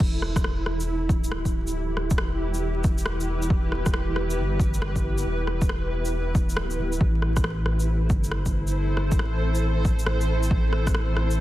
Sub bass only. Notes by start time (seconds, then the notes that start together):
0.00 E1
1.10 D1
2.11 E1
3.50 E1
4.38 G1
5.26 E1
6.58 D1
6.79 D1
7.01 A1
8.10 G1
9.12 A1
10.51 A1